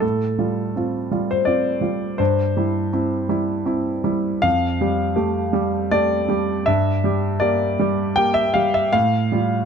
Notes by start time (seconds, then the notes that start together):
0.00 A2 A4
0.39 G3 F4
0.76 C4 F4
1.11 G3 F4
1.31 C5
1.45 C4 F4 D5
1.81 G3 F4
2.18 G2 C5
2.57 G3 E4
2.93 C4 E4
3.29 G3 E4
3.65 C4 E4
4.04 G3 E4
4.42 F2 F5
4.81 G3 G4
5.16 A3 G4
5.53 G3 G4
5.91 A3 G4 D5
6.29 G3 G4
6.66 G2 E5
7.04 G3 G4
7.40 A#3 G4 D5
7.79 G3 G4
8.16 A#3 G4 G5
8.34 E5
8.54 G3 G4 F5
8.74 E5
8.93 A2 F5
9.32 G3 F4